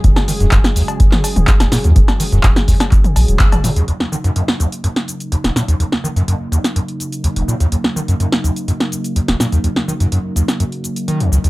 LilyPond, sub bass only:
\new Staff \with { instrumentName = "Sub bass" } { \clef bass \time 4/4 \key ees \minor \tempo 4 = 125 ees,,16 r8 ees,,16 ees,,16 r4. ees,,16 r8. ees,16 | ees,,16 r8 ees,,16 ees,,16 r4 r16 bes,,16 ees,,16 r4 | r1 | r1 |
r1 | r1 | }